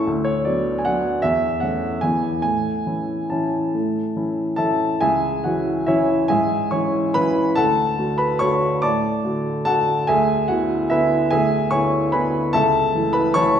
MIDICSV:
0, 0, Header, 1, 2, 480
1, 0, Start_track
1, 0, Key_signature, 3, "major"
1, 0, Tempo, 391134
1, 79, Time_signature, 3, 2, 24, 8
1, 2481, Tempo, 428266
1, 6801, Tempo, 421644
1, 11121, Tempo, 409277
1, 15728, End_track
2, 0, Start_track
2, 0, Title_t, "Upright piano"
2, 0, Program_c, 0, 0
2, 0, Control_c, 0, 64, 127
2, 83, Note_on_c, 0, 38, 60
2, 100, Control_c, 0, 64, 0
2, 273, Control_c, 0, 64, 127
2, 301, Note_on_c, 0, 73, 83
2, 541, Note_off_c, 0, 38, 0
2, 546, Note_off_c, 0, 73, 0
2, 551, Note_on_c, 0, 74, 66
2, 567, Note_on_c, 0, 54, 40
2, 569, Note_on_c, 0, 59, 41
2, 578, Note_on_c, 0, 62, 38
2, 953, Note_off_c, 0, 74, 0
2, 963, Note_on_c, 0, 80, 63
2, 999, Note_off_c, 0, 54, 0
2, 1000, Note_off_c, 0, 59, 0
2, 1004, Note_off_c, 0, 62, 0
2, 1040, Note_on_c, 0, 78, 92
2, 1044, Note_off_c, 0, 80, 0
2, 1058, Note_on_c, 0, 54, 44
2, 1067, Note_on_c, 0, 59, 40
2, 1067, Note_on_c, 0, 62, 48
2, 1474, Note_off_c, 0, 54, 0
2, 1478, Note_off_c, 0, 59, 0
2, 1479, Note_off_c, 0, 62, 0
2, 1499, Note_on_c, 0, 76, 93
2, 1511, Note_off_c, 0, 78, 0
2, 1518, Note_on_c, 0, 40, 65
2, 1531, Control_c, 0, 64, 0
2, 1758, Control_c, 0, 64, 127
2, 1966, Note_on_c, 0, 78, 71
2, 1970, Note_off_c, 0, 40, 0
2, 1974, Note_off_c, 0, 76, 0
2, 1989, Note_on_c, 0, 52, 34
2, 1990, Note_on_c, 0, 57, 35
2, 1998, Note_on_c, 0, 61, 37
2, 2437, Note_off_c, 0, 52, 0
2, 2437, Note_off_c, 0, 57, 0
2, 2441, Note_off_c, 0, 61, 0
2, 2469, Note_on_c, 0, 80, 83
2, 2474, Note_off_c, 0, 78, 0
2, 2485, Note_on_c, 0, 40, 54
2, 2489, Note_on_c, 0, 52, 39
2, 2494, Note_on_c, 0, 59, 36
2, 2501, Control_c, 0, 64, 0
2, 2502, Note_on_c, 0, 64, 39
2, 2661, Control_c, 0, 64, 127
2, 2911, Note_off_c, 0, 52, 0
2, 2914, Note_off_c, 0, 59, 0
2, 2914, Note_off_c, 0, 80, 0
2, 2918, Note_off_c, 0, 64, 0
2, 2930, Note_on_c, 0, 80, 84
2, 2940, Note_off_c, 0, 40, 0
2, 2947, Note_on_c, 0, 45, 50
2, 2977, Control_c, 0, 64, 0
2, 3197, Control_c, 0, 64, 127
2, 3413, Note_off_c, 0, 45, 0
2, 3423, Note_on_c, 0, 52, 32
2, 3430, Note_on_c, 0, 64, 36
2, 3431, Note_on_c, 0, 61, 29
2, 3880, Note_off_c, 0, 52, 0
2, 3883, Note_off_c, 0, 61, 0
2, 3883, Note_off_c, 0, 64, 0
2, 3912, Note_on_c, 0, 81, 56
2, 3917, Note_off_c, 0, 80, 0
2, 3928, Note_on_c, 0, 52, 33
2, 3934, Note_on_c, 0, 61, 37
2, 3939, Note_on_c, 0, 64, 41
2, 4362, Note_off_c, 0, 52, 0
2, 4365, Note_off_c, 0, 61, 0
2, 4367, Note_off_c, 0, 64, 0
2, 4413, Note_on_c, 0, 45, 46
2, 4430, Control_c, 0, 64, 0
2, 4654, Control_c, 0, 64, 127
2, 4865, Note_off_c, 0, 45, 0
2, 4878, Note_on_c, 0, 52, 28
2, 4883, Note_on_c, 0, 61, 30
2, 4888, Note_on_c, 0, 64, 36
2, 5308, Note_off_c, 0, 52, 0
2, 5311, Note_off_c, 0, 61, 0
2, 5313, Note_off_c, 0, 81, 0
2, 5314, Note_off_c, 0, 64, 0
2, 5330, Note_on_c, 0, 81, 76
2, 5344, Note_on_c, 0, 76, 54
2, 5347, Note_on_c, 0, 69, 55
2, 5352, Note_on_c, 0, 52, 37
2, 5356, Note_on_c, 0, 61, 34
2, 5356, Note_on_c, 0, 64, 36
2, 5793, Note_off_c, 0, 52, 0
2, 5795, Note_off_c, 0, 61, 0
2, 5795, Note_off_c, 0, 64, 0
2, 5800, Note_off_c, 0, 76, 0
2, 5801, Note_off_c, 0, 69, 0
2, 5825, Note_on_c, 0, 80, 89
2, 5827, Note_off_c, 0, 81, 0
2, 5833, Note_on_c, 0, 76, 66
2, 5835, Note_on_c, 0, 68, 64
2, 5841, Note_on_c, 0, 37, 53
2, 5859, Control_c, 0, 64, 0
2, 6066, Control_c, 0, 64, 127
2, 6278, Note_off_c, 0, 76, 0
2, 6280, Note_off_c, 0, 68, 0
2, 6302, Note_off_c, 0, 37, 0
2, 6308, Note_off_c, 0, 80, 0
2, 6310, Note_on_c, 0, 78, 64
2, 6323, Note_on_c, 0, 66, 53
2, 6327, Note_on_c, 0, 52, 38
2, 6331, Note_on_c, 0, 61, 33
2, 6336, Note_on_c, 0, 64, 38
2, 6763, Note_off_c, 0, 52, 0
2, 6765, Note_off_c, 0, 61, 0
2, 6768, Note_off_c, 0, 64, 0
2, 6772, Note_off_c, 0, 66, 0
2, 6789, Note_on_c, 0, 76, 78
2, 6800, Note_off_c, 0, 78, 0
2, 6801, Note_on_c, 0, 64, 61
2, 6803, Note_on_c, 0, 73, 62
2, 6809, Note_on_c, 0, 52, 48
2, 6810, Note_on_c, 0, 61, 43
2, 7242, Note_off_c, 0, 52, 0
2, 7243, Note_off_c, 0, 61, 0
2, 7250, Note_off_c, 0, 64, 0
2, 7251, Note_off_c, 0, 73, 0
2, 7264, Note_off_c, 0, 76, 0
2, 7264, Note_on_c, 0, 80, 91
2, 7281, Note_on_c, 0, 68, 64
2, 7281, Note_on_c, 0, 76, 72
2, 7283, Note_on_c, 0, 44, 58
2, 7303, Control_c, 0, 64, 0
2, 7491, Control_c, 0, 64, 127
2, 7723, Note_off_c, 0, 68, 0
2, 7723, Note_off_c, 0, 76, 0
2, 7743, Note_off_c, 0, 44, 0
2, 7743, Note_off_c, 0, 80, 0
2, 7749, Note_on_c, 0, 85, 70
2, 7760, Note_on_c, 0, 80, 61
2, 7762, Note_on_c, 0, 73, 58
2, 7766, Note_on_c, 0, 52, 39
2, 7767, Note_on_c, 0, 61, 36
2, 7773, Note_on_c, 0, 64, 42
2, 8211, Note_off_c, 0, 52, 0
2, 8212, Note_off_c, 0, 61, 0
2, 8214, Note_off_c, 0, 64, 0
2, 8219, Note_off_c, 0, 80, 0
2, 8220, Note_off_c, 0, 73, 0
2, 8242, Note_on_c, 0, 83, 92
2, 8248, Note_off_c, 0, 85, 0
2, 8251, Note_on_c, 0, 71, 73
2, 8256, Note_on_c, 0, 52, 43
2, 8266, Note_on_c, 0, 61, 45
2, 8269, Note_on_c, 0, 64, 50
2, 8686, Note_off_c, 0, 52, 0
2, 8691, Note_off_c, 0, 61, 0
2, 8693, Note_off_c, 0, 64, 0
2, 8696, Note_off_c, 0, 71, 0
2, 8712, Note_on_c, 0, 81, 96
2, 8725, Note_off_c, 0, 83, 0
2, 8727, Note_on_c, 0, 78, 69
2, 8728, Note_on_c, 0, 69, 64
2, 8731, Note_on_c, 0, 38, 53
2, 8749, Control_c, 0, 64, 0
2, 8937, Control_c, 0, 64, 127
2, 9184, Note_off_c, 0, 38, 0
2, 9193, Note_on_c, 0, 50, 39
2, 9199, Note_on_c, 0, 57, 38
2, 9203, Note_on_c, 0, 66, 46
2, 9394, Note_off_c, 0, 69, 0
2, 9394, Note_off_c, 0, 78, 0
2, 9421, Note_on_c, 0, 83, 82
2, 9432, Note_off_c, 0, 81, 0
2, 9432, Note_on_c, 0, 71, 63
2, 9639, Note_off_c, 0, 50, 0
2, 9642, Note_off_c, 0, 57, 0
2, 9644, Note_off_c, 0, 66, 0
2, 9665, Note_off_c, 0, 71, 0
2, 9665, Note_on_c, 0, 85, 94
2, 9677, Note_off_c, 0, 83, 0
2, 9681, Note_on_c, 0, 73, 68
2, 9687, Note_on_c, 0, 50, 46
2, 9689, Note_on_c, 0, 57, 45
2, 9691, Note_on_c, 0, 66, 53
2, 10117, Note_off_c, 0, 50, 0
2, 10118, Note_off_c, 0, 57, 0
2, 10119, Note_off_c, 0, 66, 0
2, 10126, Note_off_c, 0, 73, 0
2, 10151, Note_on_c, 0, 86, 93
2, 10152, Note_off_c, 0, 85, 0
2, 10163, Note_on_c, 0, 81, 73
2, 10166, Note_on_c, 0, 74, 68
2, 10170, Note_on_c, 0, 45, 56
2, 10186, Control_c, 0, 64, 0
2, 10340, Control_c, 0, 64, 127
2, 10622, Note_off_c, 0, 45, 0
2, 10632, Note_on_c, 0, 57, 39
2, 10633, Note_on_c, 0, 50, 38
2, 10638, Note_on_c, 0, 66, 42
2, 10832, Note_off_c, 0, 81, 0
2, 10833, Note_off_c, 0, 74, 0
2, 10871, Note_off_c, 0, 86, 0
2, 11078, Note_off_c, 0, 57, 0
2, 11079, Note_off_c, 0, 50, 0
2, 11081, Note_off_c, 0, 66, 0
2, 11098, Note_on_c, 0, 81, 96
2, 11112, Note_on_c, 0, 78, 70
2, 11114, Note_on_c, 0, 69, 63
2, 11119, Note_on_c, 0, 50, 43
2, 11124, Note_on_c, 0, 57, 45
2, 11125, Note_on_c, 0, 66, 46
2, 11562, Note_off_c, 0, 50, 0
2, 11565, Note_off_c, 0, 57, 0
2, 11565, Note_off_c, 0, 66, 0
2, 11571, Note_off_c, 0, 78, 0
2, 11572, Note_off_c, 0, 69, 0
2, 11593, Note_on_c, 0, 80, 94
2, 11599, Note_off_c, 0, 81, 0
2, 11608, Note_on_c, 0, 76, 73
2, 11609, Note_on_c, 0, 68, 67
2, 11615, Note_on_c, 0, 38, 63
2, 11633, Control_c, 0, 64, 0
2, 11815, Control_c, 0, 64, 127
2, 12053, Note_off_c, 0, 76, 0
2, 12054, Note_off_c, 0, 68, 0
2, 12069, Note_on_c, 0, 78, 77
2, 12076, Note_off_c, 0, 38, 0
2, 12079, Note_off_c, 0, 80, 0
2, 12079, Note_on_c, 0, 66, 57
2, 12089, Note_on_c, 0, 50, 37
2, 12090, Note_on_c, 0, 59, 38
2, 12094, Note_on_c, 0, 64, 43
2, 12534, Note_off_c, 0, 50, 0
2, 12534, Note_off_c, 0, 59, 0
2, 12536, Note_off_c, 0, 64, 0
2, 12541, Note_off_c, 0, 66, 0
2, 12560, Note_on_c, 0, 76, 85
2, 12571, Note_off_c, 0, 78, 0
2, 12575, Note_on_c, 0, 64, 60
2, 12577, Note_on_c, 0, 71, 66
2, 12579, Note_on_c, 0, 50, 43
2, 12582, Note_on_c, 0, 59, 50
2, 13009, Note_off_c, 0, 50, 0
2, 13010, Note_off_c, 0, 59, 0
2, 13020, Note_off_c, 0, 64, 0
2, 13021, Note_off_c, 0, 71, 0
2, 13031, Note_off_c, 0, 76, 0
2, 13038, Note_on_c, 0, 80, 96
2, 13049, Note_on_c, 0, 76, 77
2, 13051, Note_on_c, 0, 68, 72
2, 13056, Note_on_c, 0, 38, 58
2, 13075, Control_c, 0, 64, 0
2, 13306, Control_c, 0, 64, 127
2, 13492, Note_off_c, 0, 76, 0
2, 13493, Note_off_c, 0, 68, 0
2, 13502, Note_off_c, 0, 80, 0
2, 13508, Note_on_c, 0, 85, 90
2, 13515, Note_off_c, 0, 38, 0
2, 13520, Note_on_c, 0, 73, 67
2, 13520, Note_on_c, 0, 80, 69
2, 13526, Note_on_c, 0, 50, 42
2, 13529, Note_on_c, 0, 59, 41
2, 13534, Note_on_c, 0, 64, 41
2, 13966, Note_off_c, 0, 50, 0
2, 13968, Note_off_c, 0, 59, 0
2, 13970, Note_off_c, 0, 64, 0
2, 13976, Note_off_c, 0, 73, 0
2, 13976, Note_off_c, 0, 80, 0
2, 13995, Note_on_c, 0, 83, 81
2, 14004, Note_off_c, 0, 85, 0
2, 14004, Note_on_c, 0, 80, 62
2, 14007, Note_on_c, 0, 71, 65
2, 14011, Note_on_c, 0, 50, 49
2, 14016, Note_on_c, 0, 59, 45
2, 14021, Note_on_c, 0, 64, 47
2, 14442, Note_off_c, 0, 50, 0
2, 14445, Note_off_c, 0, 59, 0
2, 14447, Note_off_c, 0, 64, 0
2, 14452, Note_off_c, 0, 80, 0
2, 14454, Note_off_c, 0, 71, 0
2, 14474, Note_on_c, 0, 81, 103
2, 14481, Note_off_c, 0, 83, 0
2, 14486, Note_on_c, 0, 69, 77
2, 14490, Note_on_c, 0, 76, 72
2, 14493, Note_on_c, 0, 37, 62
2, 14510, Control_c, 0, 64, 0
2, 14738, Control_c, 0, 64, 127
2, 14947, Note_off_c, 0, 37, 0
2, 14963, Note_on_c, 0, 52, 36
2, 14965, Note_on_c, 0, 57, 42
2, 14969, Note_on_c, 0, 64, 44
2, 15150, Note_off_c, 0, 69, 0
2, 15152, Note_off_c, 0, 76, 0
2, 15177, Note_on_c, 0, 83, 90
2, 15190, Note_on_c, 0, 71, 72
2, 15191, Note_off_c, 0, 81, 0
2, 15396, Note_off_c, 0, 52, 0
2, 15397, Note_off_c, 0, 57, 0
2, 15399, Note_off_c, 0, 64, 0
2, 15420, Note_off_c, 0, 71, 0
2, 15425, Note_on_c, 0, 85, 106
2, 15430, Note_off_c, 0, 83, 0
2, 15440, Note_on_c, 0, 73, 76
2, 15442, Note_on_c, 0, 81, 74
2, 15443, Note_on_c, 0, 52, 52
2, 15446, Note_on_c, 0, 57, 50
2, 15455, Note_on_c, 0, 64, 52
2, 15728, Note_off_c, 0, 52, 0
2, 15728, Note_off_c, 0, 57, 0
2, 15728, Note_off_c, 0, 64, 0
2, 15728, Note_off_c, 0, 73, 0
2, 15728, Note_off_c, 0, 81, 0
2, 15728, Note_off_c, 0, 85, 0
2, 15728, End_track
0, 0, End_of_file